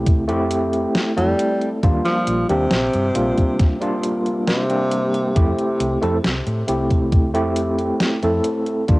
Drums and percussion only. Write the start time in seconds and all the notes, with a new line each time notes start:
0.06 kick, closed hi-hat
0.29 closed hi-hat
0.51 closed hi-hat
0.73 closed hi-hat
0.95 snare, closed hi-hat
1.18 closed hi-hat
1.39 closed hi-hat
1.61 closed hi-hat
1.83 kick, closed hi-hat
2.05 snare, closed hi-hat
2.27 closed hi-hat
2.49 closed hi-hat
2.71 snare, closed hi-hat
2.93 closed hi-hat
3.15 closed hi-hat
3.38 kick, closed hi-hat
3.60 kick, snare, closed hi-hat
3.82 closed hi-hat
4.03 closed hi-hat
4.26 closed hi-hat
4.48 snare, closed hi-hat
4.70 closed hi-hat
4.91 closed hi-hat
5.14 closed hi-hat
5.36 kick, closed hi-hat
5.59 closed hi-hat
5.80 closed hi-hat
6.03 closed hi-hat
6.24 snare, closed hi-hat
6.47 closed hi-hat
6.68 closed hi-hat
6.91 kick, closed hi-hat
7.12 kick, closed hi-hat
7.35 closed hi-hat
7.56 closed hi-hat
7.79 closed hi-hat
8.00 snare, closed hi-hat
8.23 closed hi-hat
8.44 closed hi-hat
8.66 closed hi-hat
8.88 kick, closed hi-hat